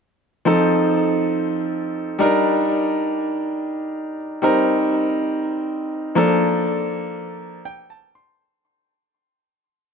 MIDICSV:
0, 0, Header, 1, 2, 480
1, 0, Start_track
1, 0, Key_signature, -2, "major"
1, 0, Tempo, 495868
1, 452, Time_signature, 4, 2, 24, 8
1, 9621, End_track
2, 0, Start_track
2, 0, Title_t, "Grand piano"
2, 0, Program_c, 0, 0
2, 438, Note_on_c, 0, 53, 65
2, 445, Note_on_c, 0, 60, 62
2, 453, Note_on_c, 0, 63, 61
2, 459, Note_on_c, 0, 69, 74
2, 608, Control_c, 0, 64, 127
2, 2091, Note_off_c, 0, 53, 0
2, 2095, Note_off_c, 0, 60, 0
2, 2099, Note_off_c, 0, 63, 0
2, 2102, Note_off_c, 0, 69, 0
2, 2117, Note_on_c, 0, 55, 68
2, 2127, Note_on_c, 0, 62, 61
2, 2134, Note_on_c, 0, 63, 64
2, 2143, Note_on_c, 0, 70, 76
2, 2144, Control_c, 0, 64, 0
2, 2337, Control_c, 0, 64, 127
2, 4006, Note_off_c, 0, 55, 0
2, 4011, Note_off_c, 0, 62, 0
2, 4014, Note_off_c, 0, 63, 0
2, 4019, Note_off_c, 0, 70, 0
2, 4277, Note_on_c, 0, 55, 65
2, 4286, Note_on_c, 0, 60, 60
2, 4293, Note_on_c, 0, 63, 61
2, 4300, Note_on_c, 0, 70, 74
2, 4305, Control_c, 0, 64, 0
2, 4471, Control_c, 0, 64, 127
2, 5931, Note_off_c, 0, 55, 0
2, 5935, Note_off_c, 0, 60, 0
2, 5939, Note_off_c, 0, 63, 0
2, 5942, Note_off_c, 0, 70, 0
2, 5956, Note_on_c, 0, 53, 67
2, 5964, Note_on_c, 0, 58, 62
2, 5975, Note_on_c, 0, 62, 65
2, 5982, Note_on_c, 0, 69, 77
2, 5984, Control_c, 0, 64, 0
2, 6143, Control_c, 0, 64, 127
2, 7409, Note_on_c, 0, 79, 69
2, 7633, Note_off_c, 0, 79, 0
2, 7648, Note_on_c, 0, 81, 65
2, 7845, Note_off_c, 0, 53, 0
2, 7850, Note_off_c, 0, 58, 0
2, 7855, Note_off_c, 0, 62, 0
2, 7859, Note_off_c, 0, 69, 0
2, 7873, Note_off_c, 0, 81, 0
2, 7891, Note_on_c, 0, 84, 66
2, 8115, Note_off_c, 0, 84, 0
2, 8143, Control_c, 0, 64, 0
2, 9621, End_track
0, 0, End_of_file